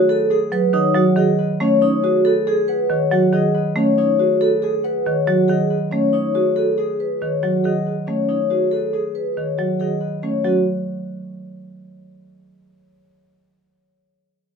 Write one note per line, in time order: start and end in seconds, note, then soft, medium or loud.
0.00 0.15 F#4 medium
0.00 0.29 G#4 medium
0.00 0.72 C#5 medium
0.00 1.16 D#5 medium
0.00 0.50 F#5 medium
0.09 0.37 A4 medium
0.09 1.37 B4 medium
0.30 2.02 G#4 medium
0.30 0.58 G#4 medium
0.52 0.80 F#3 medium
0.52 0.80 B4 medium
0.52 0.94 F#5 medium
0.73 1.01 D#3 medium
0.73 1.01 D#4 medium
0.73 1.59 C#5 medium
0.95 1.23 F#3 medium
0.95 1.23 F#4 medium
0.95 2.67 F#5 medium
1.16 1.44 D#3 medium
1.16 1.45 G#4 medium
1.16 3.32 D#5 medium
1.38 2.24 B4 medium
1.60 1.88 A3 medium
1.60 1.88 C#4 medium
1.60 1.80 C#5 medium
1.81 2.09 D#4 medium
1.81 2.88 C#5 medium
2.03 2.31 F#4 medium
2.03 2.46 G#4 medium
2.25 2.53 A4 medium
2.25 3.53 B4 medium
2.47 4.18 G#4 medium
2.47 2.74 G#4 medium
2.68 2.96 B4 medium
2.68 3.10 F#5 medium
2.90 3.17 D#3 medium
2.90 3.75 C#5 medium
3.11 3.39 F#3 medium
3.11 3.39 F#4 medium
3.11 4.83 F#5 medium
3.33 3.61 D#3 medium
3.33 3.61 G#4 medium
3.33 5.47 D#5 medium
3.54 4.40 B4 medium
3.76 4.04 A3 medium
3.76 4.04 C#4 medium
3.76 3.97 C#5 medium
3.98 4.25 D#4 medium
3.98 5.05 C#5 medium
4.19 4.47 F#4 medium
4.19 4.62 G#4 medium
4.41 4.69 A4 medium
4.41 5.69 B4 medium
4.62 4.90 G#4 medium
4.62 6.33 G#4 medium
4.84 5.12 B4 medium
4.84 5.26 F#5 medium
5.06 5.34 D#3 medium
5.06 5.90 C#5 medium
5.27 5.55 F#3 medium
5.27 5.55 F#4 medium
5.27 7.41 F#5 medium
5.48 5.77 D#3 medium
5.48 5.76 G#4 medium
5.48 7.63 D#5 medium
5.70 6.54 B4 medium
5.91 6.20 A3 medium
5.91 6.19 C#4 medium
5.91 6.12 C#5 medium
6.13 6.41 D#4 medium
6.13 7.20 C#5 medium
6.34 6.63 F#4 medium
6.34 6.76 G#4 medium
6.56 6.84 A4 medium
6.56 7.85 B4 medium
6.77 8.49 G#4 medium
6.77 7.06 G#4 medium
7.00 7.28 B4 medium
7.21 7.49 D#3 medium
7.21 8.06 C#5 medium
7.43 7.71 F#3 medium
7.43 7.71 F#4 soft
7.43 9.57 F#5 medium
7.64 7.92 D#3 medium
7.64 7.92 G#4 medium
7.64 9.79 D#5 medium
7.86 8.71 B4 medium
8.07 8.35 A3 medium
8.07 8.35 C#4 soft
8.07 8.27 C#5 medium
8.28 8.57 D#4 soft
8.28 9.35 C#5 medium
8.50 8.78 F#4 medium
8.50 8.92 G#4 soft
8.71 9.00 A4 medium
8.71 9.99 B4 soft
8.93 10.46 G#4 medium
8.93 9.21 G#4 soft
9.15 9.43 B4 soft
9.37 9.65 D#3 soft
9.37 10.22 C#5 soft
9.58 9.86 F#3 medium
9.58 9.86 F#4 soft
9.58 12.62 F#5 medium
9.80 10.08 D#3 soft
9.80 10.08 G#4 soft
9.80 12.62 D#5 medium
10.00 10.44 B4 soft
10.23 10.51 A3 medium
10.23 10.51 C#4 soft
10.23 12.62 C#5 medium
10.44 10.64 F#3 medium
10.44 10.65 F#4 medium
10.44 10.65 B4 medium